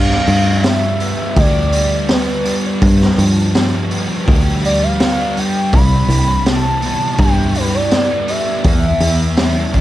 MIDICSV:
0, 0, Header, 1, 5, 480
1, 0, Start_track
1, 0, Tempo, 728155
1, 1861, Time_signature, 4, 2, 24, 8
1, 6465, End_track
2, 0, Start_track
2, 0, Title_t, "Soft synth lead"
2, 0, Program_c, 0, 80
2, 0, Note_on_c, 0, 77, 101
2, 429, Note_on_c, 0, 76, 102
2, 439, Note_off_c, 0, 77, 0
2, 913, Note_on_c, 0, 74, 99
2, 923, Note_off_c, 0, 76, 0
2, 1389, Note_on_c, 0, 71, 80
2, 1399, Note_off_c, 0, 74, 0
2, 1745, Note_off_c, 0, 71, 0
2, 3065, Note_on_c, 0, 74, 100
2, 3183, Note_on_c, 0, 77, 104
2, 3193, Note_off_c, 0, 74, 0
2, 3549, Note_on_c, 0, 79, 100
2, 3559, Note_off_c, 0, 77, 0
2, 3786, Note_on_c, 0, 83, 106
2, 3796, Note_off_c, 0, 79, 0
2, 4267, Note_on_c, 0, 81, 101
2, 4277, Note_off_c, 0, 83, 0
2, 4739, Note_on_c, 0, 79, 96
2, 4749, Note_off_c, 0, 81, 0
2, 4982, Note_on_c, 0, 71, 89
2, 4992, Note_off_c, 0, 79, 0
2, 5105, Note_on_c, 0, 74, 99
2, 5115, Note_off_c, 0, 71, 0
2, 5468, Note_on_c, 0, 76, 86
2, 5478, Note_off_c, 0, 74, 0
2, 5703, Note_off_c, 0, 76, 0
2, 5707, Note_on_c, 0, 76, 89
2, 6399, Note_off_c, 0, 76, 0
2, 6465, End_track
3, 0, Start_track
3, 0, Title_t, "Distorted electric guitar"
3, 0, Program_c, 1, 30
3, 0, Note_on_c, 1, 43, 67
3, 183, Note_on_c, 1, 53, 66
3, 427, Note_on_c, 1, 55, 64
3, 665, Note_on_c, 1, 59, 62
3, 903, Note_on_c, 1, 67, 77
3, 1140, Note_off_c, 1, 43, 0
3, 1142, Note_off_c, 1, 55, 0
3, 1145, Note_on_c, 1, 55, 67
3, 1380, Note_off_c, 1, 59, 0
3, 1381, Note_off_c, 1, 53, 0
3, 1383, Note_on_c, 1, 59, 72
3, 1615, Note_off_c, 1, 55, 0
3, 1617, Note_on_c, 1, 55, 64
3, 1861, Note_on_c, 1, 43, 74
3, 2100, Note_on_c, 1, 53, 65
3, 2119, Note_off_c, 1, 67, 0
3, 2337, Note_off_c, 1, 55, 0
3, 2340, Note_on_c, 1, 55, 65
3, 2574, Note_off_c, 1, 59, 0
3, 2577, Note_on_c, 1, 59, 67
3, 2814, Note_on_c, 1, 67, 80
3, 3056, Note_off_c, 1, 55, 0
3, 3059, Note_on_c, 1, 55, 63
3, 3060, Note_off_c, 1, 43, 0
3, 3294, Note_off_c, 1, 59, 0
3, 3297, Note_on_c, 1, 59, 77
3, 3299, Note_off_c, 1, 53, 0
3, 3535, Note_off_c, 1, 55, 0
3, 3538, Note_on_c, 1, 55, 69
3, 3777, Note_on_c, 1, 48, 77
3, 3797, Note_off_c, 1, 59, 0
3, 4015, Note_on_c, 1, 52, 61
3, 4256, Note_off_c, 1, 55, 0
3, 4259, Note_on_c, 1, 55, 62
3, 4499, Note_on_c, 1, 59, 67
3, 4736, Note_off_c, 1, 67, 0
3, 4739, Note_on_c, 1, 64, 76
3, 4968, Note_off_c, 1, 55, 0
3, 4976, Note_on_c, 1, 55, 65
3, 4979, Note_off_c, 1, 48, 0
3, 5213, Note_off_c, 1, 59, 0
3, 5219, Note_off_c, 1, 52, 0
3, 5221, Note_on_c, 1, 59, 74
3, 5456, Note_off_c, 1, 55, 0
3, 5464, Note_on_c, 1, 55, 69
3, 5700, Note_on_c, 1, 40, 75
3, 5701, Note_off_c, 1, 59, 0
3, 5701, Note_off_c, 1, 64, 0
3, 5703, Note_off_c, 1, 55, 0
3, 5946, Note_on_c, 1, 52, 65
3, 6179, Note_on_c, 1, 55, 63
3, 6424, Note_on_c, 1, 62, 64
3, 6465, Note_off_c, 1, 40, 0
3, 6465, Note_off_c, 1, 52, 0
3, 6465, Note_off_c, 1, 55, 0
3, 6465, Note_off_c, 1, 62, 0
3, 6465, End_track
4, 0, Start_track
4, 0, Title_t, "Fingered electric bass"
4, 0, Program_c, 2, 33
4, 0, Note_on_c, 2, 43, 94
4, 131, Note_off_c, 2, 43, 0
4, 182, Note_on_c, 2, 43, 100
4, 748, Note_off_c, 2, 43, 0
4, 899, Note_on_c, 2, 38, 98
4, 1654, Note_off_c, 2, 38, 0
4, 1858, Note_on_c, 2, 43, 95
4, 2048, Note_off_c, 2, 43, 0
4, 2098, Note_on_c, 2, 43, 99
4, 2665, Note_off_c, 2, 43, 0
4, 2820, Note_on_c, 2, 38, 91
4, 3575, Note_off_c, 2, 38, 0
4, 3778, Note_on_c, 2, 36, 96
4, 3968, Note_off_c, 2, 36, 0
4, 4010, Note_on_c, 2, 36, 94
4, 4581, Note_off_c, 2, 36, 0
4, 4739, Note_on_c, 2, 43, 96
4, 5496, Note_off_c, 2, 43, 0
4, 5699, Note_on_c, 2, 40, 95
4, 5889, Note_off_c, 2, 40, 0
4, 5936, Note_on_c, 2, 40, 101
4, 6465, Note_off_c, 2, 40, 0
4, 6465, End_track
5, 0, Start_track
5, 0, Title_t, "Drums"
5, 63, Note_on_c, 9, 38, 30
5, 129, Note_off_c, 9, 38, 0
5, 179, Note_on_c, 9, 46, 59
5, 245, Note_off_c, 9, 46, 0
5, 421, Note_on_c, 9, 46, 75
5, 425, Note_on_c, 9, 38, 103
5, 487, Note_off_c, 9, 46, 0
5, 490, Note_off_c, 9, 38, 0
5, 660, Note_on_c, 9, 46, 54
5, 726, Note_off_c, 9, 46, 0
5, 899, Note_on_c, 9, 46, 74
5, 900, Note_on_c, 9, 36, 105
5, 965, Note_off_c, 9, 46, 0
5, 966, Note_off_c, 9, 36, 0
5, 1137, Note_on_c, 9, 46, 61
5, 1203, Note_off_c, 9, 46, 0
5, 1376, Note_on_c, 9, 46, 72
5, 1379, Note_on_c, 9, 38, 102
5, 1442, Note_off_c, 9, 46, 0
5, 1445, Note_off_c, 9, 38, 0
5, 1618, Note_on_c, 9, 46, 59
5, 1684, Note_off_c, 9, 46, 0
5, 1856, Note_on_c, 9, 46, 84
5, 1858, Note_on_c, 9, 36, 112
5, 1922, Note_off_c, 9, 46, 0
5, 1924, Note_off_c, 9, 36, 0
5, 1985, Note_on_c, 9, 38, 32
5, 2051, Note_off_c, 9, 38, 0
5, 2099, Note_on_c, 9, 46, 60
5, 2165, Note_off_c, 9, 46, 0
5, 2339, Note_on_c, 9, 46, 70
5, 2342, Note_on_c, 9, 38, 103
5, 2404, Note_off_c, 9, 46, 0
5, 2408, Note_off_c, 9, 38, 0
5, 2576, Note_on_c, 9, 46, 51
5, 2642, Note_off_c, 9, 46, 0
5, 2819, Note_on_c, 9, 36, 107
5, 2819, Note_on_c, 9, 46, 75
5, 2885, Note_off_c, 9, 36, 0
5, 2885, Note_off_c, 9, 46, 0
5, 3061, Note_on_c, 9, 46, 53
5, 3127, Note_off_c, 9, 46, 0
5, 3295, Note_on_c, 9, 46, 71
5, 3299, Note_on_c, 9, 38, 100
5, 3361, Note_off_c, 9, 46, 0
5, 3364, Note_off_c, 9, 38, 0
5, 3539, Note_on_c, 9, 46, 55
5, 3605, Note_off_c, 9, 46, 0
5, 3775, Note_on_c, 9, 46, 78
5, 3778, Note_on_c, 9, 36, 116
5, 3841, Note_off_c, 9, 46, 0
5, 3843, Note_off_c, 9, 36, 0
5, 4021, Note_on_c, 9, 46, 56
5, 4086, Note_off_c, 9, 46, 0
5, 4258, Note_on_c, 9, 46, 71
5, 4262, Note_on_c, 9, 38, 99
5, 4324, Note_off_c, 9, 46, 0
5, 4327, Note_off_c, 9, 38, 0
5, 4497, Note_on_c, 9, 46, 53
5, 4563, Note_off_c, 9, 46, 0
5, 4736, Note_on_c, 9, 46, 76
5, 4739, Note_on_c, 9, 36, 111
5, 4802, Note_off_c, 9, 46, 0
5, 4805, Note_off_c, 9, 36, 0
5, 4976, Note_on_c, 9, 46, 57
5, 5042, Note_off_c, 9, 46, 0
5, 5218, Note_on_c, 9, 46, 75
5, 5221, Note_on_c, 9, 38, 98
5, 5284, Note_off_c, 9, 46, 0
5, 5287, Note_off_c, 9, 38, 0
5, 5459, Note_on_c, 9, 46, 57
5, 5525, Note_off_c, 9, 46, 0
5, 5697, Note_on_c, 9, 46, 83
5, 5699, Note_on_c, 9, 36, 120
5, 5763, Note_off_c, 9, 46, 0
5, 5765, Note_off_c, 9, 36, 0
5, 5935, Note_on_c, 9, 46, 60
5, 6001, Note_off_c, 9, 46, 0
5, 6177, Note_on_c, 9, 46, 75
5, 6180, Note_on_c, 9, 38, 106
5, 6242, Note_off_c, 9, 46, 0
5, 6246, Note_off_c, 9, 38, 0
5, 6417, Note_on_c, 9, 46, 59
5, 6421, Note_on_c, 9, 36, 76
5, 6465, Note_off_c, 9, 36, 0
5, 6465, Note_off_c, 9, 46, 0
5, 6465, End_track
0, 0, End_of_file